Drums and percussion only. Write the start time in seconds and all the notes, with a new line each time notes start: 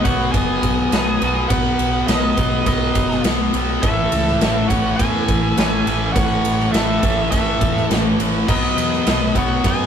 0.05 kick, ride
0.34 kick, ride
0.63 kick, ride
0.92 snare, ride
1.22 ride
1.50 kick, ride
1.79 ride
2.08 snare, ride
2.37 kick, ride
2.66 kick, ride
2.95 kick, ride
3.11 snare
3.24 snare, ride
3.54 ride
3.83 kick, ride
4.12 ride
4.28 snare
4.41 snare, ride
4.70 kick, ride
4.99 kick, ride
5.28 kick, ride
5.58 snare, ride
5.87 ride
6.16 kick, ride
6.45 ride
6.60 snare
6.74 snare, ride
7.03 kick, ride
7.32 kick, ride
7.61 kick, ride
7.77 snare
7.91 snare, ride
8.20 ride
8.49 kick, crash
8.78 ride
8.93 snare
9.07 snare, ride
9.35 kick, ride
9.64 kick, ride